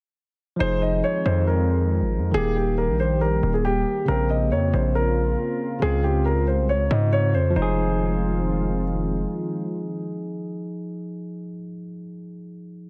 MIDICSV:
0, 0, Header, 1, 5, 480
1, 0, Start_track
1, 0, Key_signature, -4, "minor"
1, 0, Tempo, 434783
1, 667, Time_signature, 4, 2, 24, 8
1, 14238, End_track
2, 0, Start_track
2, 0, Title_t, "Grand piano"
2, 0, Program_c, 0, 0
2, 666, Note_on_c, 0, 72, 114
2, 887, Note_off_c, 0, 72, 0
2, 906, Note_on_c, 0, 75, 80
2, 1127, Note_off_c, 0, 75, 0
2, 1146, Note_on_c, 0, 73, 88
2, 1367, Note_off_c, 0, 73, 0
2, 1386, Note_on_c, 0, 72, 85
2, 1607, Note_off_c, 0, 72, 0
2, 1626, Note_on_c, 0, 70, 76
2, 2542, Note_off_c, 0, 70, 0
2, 2586, Note_on_c, 0, 68, 116
2, 2807, Note_off_c, 0, 68, 0
2, 2827, Note_on_c, 0, 67, 74
2, 3048, Note_off_c, 0, 67, 0
2, 3066, Note_on_c, 0, 70, 75
2, 3287, Note_off_c, 0, 70, 0
2, 3309, Note_on_c, 0, 72, 81
2, 3529, Note_off_c, 0, 72, 0
2, 3546, Note_on_c, 0, 70, 82
2, 3885, Note_off_c, 0, 70, 0
2, 3907, Note_on_c, 0, 68, 75
2, 4017, Note_off_c, 0, 68, 0
2, 4027, Note_on_c, 0, 67, 91
2, 4478, Note_off_c, 0, 67, 0
2, 4507, Note_on_c, 0, 70, 91
2, 4727, Note_off_c, 0, 70, 0
2, 4748, Note_on_c, 0, 75, 69
2, 4968, Note_off_c, 0, 75, 0
2, 4987, Note_on_c, 0, 73, 74
2, 5208, Note_off_c, 0, 73, 0
2, 5227, Note_on_c, 0, 72, 74
2, 5448, Note_off_c, 0, 72, 0
2, 5468, Note_on_c, 0, 70, 81
2, 6383, Note_off_c, 0, 70, 0
2, 6428, Note_on_c, 0, 68, 104
2, 6648, Note_off_c, 0, 68, 0
2, 6668, Note_on_c, 0, 67, 80
2, 6888, Note_off_c, 0, 67, 0
2, 6907, Note_on_c, 0, 70, 78
2, 7127, Note_off_c, 0, 70, 0
2, 7147, Note_on_c, 0, 72, 67
2, 7368, Note_off_c, 0, 72, 0
2, 7388, Note_on_c, 0, 73, 86
2, 7608, Note_off_c, 0, 73, 0
2, 7627, Note_on_c, 0, 75, 68
2, 7848, Note_off_c, 0, 75, 0
2, 7868, Note_on_c, 0, 73, 87
2, 8088, Note_off_c, 0, 73, 0
2, 8109, Note_on_c, 0, 72, 77
2, 8328, Note_off_c, 0, 72, 0
2, 8347, Note_on_c, 0, 72, 86
2, 9743, Note_off_c, 0, 72, 0
2, 14238, End_track
3, 0, Start_track
3, 0, Title_t, "Tine electric piano"
3, 0, Program_c, 1, 4
3, 621, Note_on_c, 1, 53, 62
3, 654, Note_on_c, 1, 63, 62
3, 685, Note_on_c, 1, 68, 64
3, 897, Control_c, 1, 64, 127
3, 2525, Note_off_c, 1, 53, 0
3, 2542, Note_off_c, 1, 63, 0
3, 2555, Note_on_c, 1, 51, 70
3, 2558, Note_off_c, 1, 68, 0
3, 2587, Note_on_c, 1, 58, 66
3, 2600, Control_c, 1, 64, 0
3, 2619, Note_on_c, 1, 67, 73
3, 2761, Control_c, 1, 64, 127
3, 4452, Note_off_c, 1, 51, 0
3, 4469, Note_off_c, 1, 58, 0
3, 4474, Note_on_c, 1, 49, 65
3, 4485, Note_off_c, 1, 67, 0
3, 4507, Note_on_c, 1, 58, 56
3, 4522, Control_c, 1, 64, 0
3, 4539, Note_on_c, 1, 60, 78
3, 4687, Control_c, 1, 64, 127
3, 6372, Note_off_c, 1, 49, 0
3, 6388, Note_off_c, 1, 58, 0
3, 6396, Note_on_c, 1, 49, 65
3, 6405, Note_off_c, 1, 60, 0
3, 6429, Note_on_c, 1, 60, 59
3, 6440, Control_c, 1, 64, 0
3, 6461, Note_on_c, 1, 65, 67
3, 6661, Control_c, 1, 64, 127
3, 8284, Note_on_c, 1, 53, 80
3, 8293, Note_off_c, 1, 49, 0
3, 8310, Note_off_c, 1, 60, 0
3, 8326, Note_off_c, 1, 65, 0
3, 8348, Note_on_c, 1, 63, 76
3, 8363, Control_c, 1, 64, 0
3, 8412, Note_on_c, 1, 68, 91
3, 8574, Control_c, 1, 64, 127
3, 12620, Note_off_c, 1, 53, 0
3, 12684, Note_off_c, 1, 63, 0
3, 12749, Note_off_c, 1, 68, 0
3, 14238, End_track
4, 0, Start_track
4, 0, Title_t, "Analog synth pad"
4, 0, Program_c, 2, 89
4, 666, Note_on_c, 2, 51, 86
4, 666, Note_on_c, 2, 56, 78
4, 666, Note_on_c, 2, 65, 91
4, 667, Note_on_c, 2, 60, 79
4, 2567, Note_off_c, 2, 51, 0
4, 2567, Note_off_c, 2, 56, 0
4, 2567, Note_off_c, 2, 65, 0
4, 2568, Note_off_c, 2, 60, 0
4, 2586, Note_on_c, 2, 55, 78
4, 2586, Note_on_c, 2, 58, 78
4, 2586, Note_on_c, 2, 67, 94
4, 2587, Note_on_c, 2, 51, 87
4, 4487, Note_off_c, 2, 55, 0
4, 4487, Note_off_c, 2, 67, 0
4, 4488, Note_off_c, 2, 51, 0
4, 4506, Note_on_c, 2, 60, 78
4, 4507, Note_on_c, 2, 49, 88
4, 4507, Note_on_c, 2, 65, 96
4, 6388, Note_off_c, 2, 58, 0
4, 6427, Note_on_c, 2, 56, 78
4, 8308, Note_off_c, 2, 60, 0
4, 8308, Note_off_c, 2, 65, 0
4, 8309, Note_off_c, 2, 49, 0
4, 8328, Note_off_c, 2, 56, 0
4, 8347, Note_on_c, 2, 56, 79
4, 8347, Note_on_c, 2, 60, 80
4, 8348, Note_on_c, 2, 51, 89
4, 8348, Note_on_c, 2, 65, 96
4, 12684, Note_off_c, 2, 56, 0
4, 12684, Note_off_c, 2, 60, 0
4, 12684, Note_off_c, 2, 65, 0
4, 12685, Note_off_c, 2, 51, 0
4, 14238, End_track
5, 0, Start_track
5, 0, Title_t, "808-style bass"
5, 0, Program_c, 3, 38
5, 667, Note_on_c, 3, 29, 107
5, 1128, Note_off_c, 3, 29, 0
5, 1387, Note_on_c, 3, 41, 103
5, 2227, Note_on_c, 3, 32, 91
5, 2243, Note_off_c, 3, 41, 0
5, 2407, Note_on_c, 3, 41, 96
5, 2424, Note_off_c, 3, 32, 0
5, 2578, Note_off_c, 3, 41, 0
5, 2587, Note_on_c, 3, 27, 105
5, 3187, Note_on_c, 3, 34, 99
5, 3204, Note_off_c, 3, 27, 0
5, 3757, Note_off_c, 3, 34, 0
5, 3788, Note_on_c, 3, 27, 109
5, 4248, Note_off_c, 3, 27, 0
5, 4507, Note_on_c, 3, 34, 98
5, 4987, Note_on_c, 3, 41, 94
5, 5003, Note_off_c, 3, 34, 0
5, 5215, Note_off_c, 3, 41, 0
5, 5228, Note_on_c, 3, 34, 107
5, 5919, Note_off_c, 3, 34, 0
5, 6427, Note_on_c, 3, 37, 104
5, 7266, Note_on_c, 3, 36, 98
5, 7283, Note_off_c, 3, 37, 0
5, 7447, Note_on_c, 3, 37, 98
5, 7463, Note_off_c, 3, 36, 0
5, 7618, Note_off_c, 3, 37, 0
5, 7626, Note_on_c, 3, 44, 110
5, 8107, Note_on_c, 3, 41, 95
5, 8123, Note_off_c, 3, 44, 0
5, 8335, Note_off_c, 3, 41, 0
5, 8347, Note_on_c, 3, 29, 105
5, 10223, Note_off_c, 3, 29, 0
5, 14238, End_track
0, 0, End_of_file